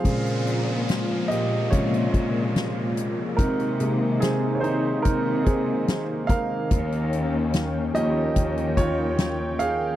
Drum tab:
HH |xxx-x-x-xxx-x-x-|xxx-x-x-x-x-x-x-|xxx-x-x-xxx-x-x-|
SD |----o-------o---|----o-------o---|----o-------o---|
BD |o-------o-o-----|o-------o-o---o-|o-------o-o-----|